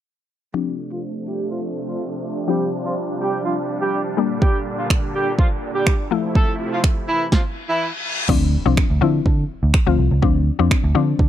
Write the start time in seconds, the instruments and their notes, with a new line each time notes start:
0.54 supersaw synth C3 F3 A3 D4, synth pluck F3 C4 D4, horn section G3 G4
0.92 horn section F3 F4
1.27 horn section G3 G4
1.51 horn section F3 F4
1.88 horn section F3 F4
2.48 synth pluck F3 C4 D4, supersaw synth G3, horn section G3 G4
2.85 horn section F3 F4
3.20 horn section G3 G4
3.45 horn section F3 F4
3.82 horn section G3 G4
4.17 supersaw synth A#2 D3, synth pluck G3 A#3 D4
4.41 horn section G3 G4, kick
4.79 horn section F3 F4
4.90 finger snap, kick
5.14 horn section G3 G4
5.38 horn section F3 F4, kick
5.75 horn section G3 G4
5.87 finger snap, kick
6.11 supersaw synth C3 F3 A3 E4, synth pluck F3 A3 E4
6.35 horn section A3 A4, kick
6.73 horn section F3 F4
6.84 finger snap, kick
7.08 horn section E3 E4
7.32 horn section F3 F4, kick, snare, reverse cymbal
7.69 horn section E3 E4
8.29 picked electric bass D2, synth pluck F3 C4 D4, kick, crash, impact
8.66 picked electric bass C2, synth pluck F3 C4 D4
8.77 finger snap, kick
8.90 picked electric bass D2
9.01 picked electric bass D3, synth pluck F3 C4 E4
9.26 picked electric bass D3, kick
9.63 picked electric bass D2
9.74 finger snap, kick
9.86 picked electric bass D2, synth pluck F3 C4 F4
9.98 picked electric bass C2
10.11 picked electric bass C#2
10.22 picked electric bass D2, synth pluck F3 C4 D4, kick
10.59 picked electric bass F2, synth pluck F3 C4 D4
10.71 finger snap, kick
10.84 picked electric bass D2
10.95 picked electric bass D3, synth pluck F3 C4 D4
11.19 picked electric bass D3, kick